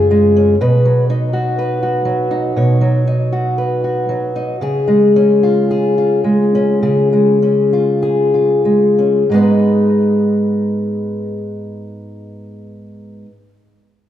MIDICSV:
0, 0, Header, 1, 3, 480
1, 0, Start_track
1, 0, Tempo, 988468
1, 288, Time_signature, 4, 2, 24, 8
1, 1733, Tempo, 1063830
1, 2693, Tempo, 1132075
1, 3173, Tempo, 1192843
1, 3653, Tempo, 1268499
1, 4133, Tempo, 1312910
1, 5889, End_track
2, 0, Start_track
2, 0, Title_t, "Steel-string acoustic guitar"
2, 0, Program_c, 0, 25
2, 0, Note_on_c, 0, 49, 52
2, 0, Note_on_c, 0, 61, 43
2, 0, Note_on_c, 0, 65, 44
2, 0, Note_on_c, 0, 68, 46
2, 52, Note_on_c, 0, 56, 52
2, 170, Note_off_c, 0, 61, 0
2, 177, Note_on_c, 0, 61, 43
2, 259, Note_off_c, 0, 56, 0
2, 259, Note_off_c, 0, 65, 0
2, 263, Note_off_c, 0, 61, 0
2, 284, Note_off_c, 0, 49, 0
2, 290, Note_off_c, 0, 68, 0
2, 295, Note_on_c, 0, 47, 64
2, 298, Note_on_c, 0, 71, 60
2, 414, Note_on_c, 0, 54, 47
2, 533, Note_on_c, 0, 63, 48
2, 647, Note_on_c, 0, 66, 44
2, 764, Note_off_c, 0, 71, 0
2, 770, Note_on_c, 0, 71, 46
2, 881, Note_off_c, 0, 66, 0
2, 887, Note_on_c, 0, 66, 43
2, 990, Note_off_c, 0, 54, 0
2, 996, Note_on_c, 0, 54, 47
2, 1115, Note_off_c, 0, 63, 0
2, 1120, Note_on_c, 0, 63, 42
2, 1239, Note_off_c, 0, 47, 0
2, 1245, Note_off_c, 0, 71, 0
2, 1245, Note_on_c, 0, 47, 53
2, 1249, Note_on_c, 0, 73, 39
2, 1359, Note_off_c, 0, 54, 0
2, 1365, Note_on_c, 0, 54, 47
2, 1485, Note_off_c, 0, 63, 0
2, 1493, Note_on_c, 0, 63, 41
2, 1609, Note_off_c, 0, 66, 0
2, 1615, Note_on_c, 0, 66, 41
2, 1736, Note_off_c, 0, 73, 0
2, 1738, Note_on_c, 0, 71, 44
2, 1850, Note_off_c, 0, 66, 0
2, 1855, Note_on_c, 0, 66, 35
2, 1963, Note_off_c, 0, 54, 0
2, 1968, Note_on_c, 0, 54, 43
2, 2083, Note_off_c, 0, 63, 0
2, 2089, Note_on_c, 0, 63, 41
2, 2176, Note_off_c, 0, 47, 0
2, 2177, Note_off_c, 0, 63, 0
2, 2177, Note_off_c, 0, 71, 0
2, 2178, Note_off_c, 0, 66, 0
2, 2204, Note_off_c, 0, 54, 0
2, 2204, Note_on_c, 0, 49, 55
2, 2209, Note_on_c, 0, 68, 52
2, 2323, Note_on_c, 0, 56, 43
2, 2452, Note_on_c, 0, 61, 39
2, 2574, Note_on_c, 0, 65, 40
2, 2692, Note_off_c, 0, 68, 0
2, 2698, Note_on_c, 0, 68, 43
2, 2807, Note_off_c, 0, 65, 0
2, 2812, Note_on_c, 0, 65, 37
2, 2919, Note_off_c, 0, 56, 0
2, 2924, Note_on_c, 0, 56, 42
2, 3049, Note_off_c, 0, 61, 0
2, 3054, Note_on_c, 0, 61, 37
2, 3166, Note_off_c, 0, 49, 0
2, 3168, Note_off_c, 0, 68, 0
2, 3171, Note_on_c, 0, 49, 50
2, 3173, Note_on_c, 0, 68, 37
2, 3288, Note_off_c, 0, 56, 0
2, 3293, Note_on_c, 0, 56, 42
2, 3408, Note_off_c, 0, 61, 0
2, 3413, Note_on_c, 0, 61, 36
2, 3531, Note_off_c, 0, 65, 0
2, 3536, Note_on_c, 0, 65, 36
2, 3650, Note_off_c, 0, 68, 0
2, 3654, Note_on_c, 0, 68, 42
2, 3769, Note_off_c, 0, 65, 0
2, 3774, Note_on_c, 0, 65, 32
2, 3887, Note_off_c, 0, 56, 0
2, 3891, Note_on_c, 0, 56, 37
2, 4012, Note_off_c, 0, 61, 0
2, 4018, Note_on_c, 0, 61, 31
2, 4104, Note_off_c, 0, 56, 0
2, 4105, Note_off_c, 0, 65, 0
2, 4107, Note_off_c, 0, 61, 0
2, 4133, Note_off_c, 0, 49, 0
2, 4135, Note_on_c, 0, 44, 42
2, 4142, Note_on_c, 0, 56, 44
2, 4150, Note_on_c, 0, 59, 45
2, 4157, Note_on_c, 0, 63, 44
2, 4164, Note_off_c, 0, 68, 0
2, 4166, Note_on_c, 0, 71, 39
2, 5575, Note_off_c, 0, 44, 0
2, 5582, Note_off_c, 0, 56, 0
2, 5590, Note_off_c, 0, 59, 0
2, 5597, Note_off_c, 0, 63, 0
2, 5606, Note_off_c, 0, 71, 0
2, 5889, End_track
3, 0, Start_track
3, 0, Title_t, "Upright bass"
3, 0, Program_c, 1, 32
3, 0, Note_on_c, 1, 42, 78
3, 269, Note_off_c, 1, 42, 0
3, 5889, End_track
0, 0, End_of_file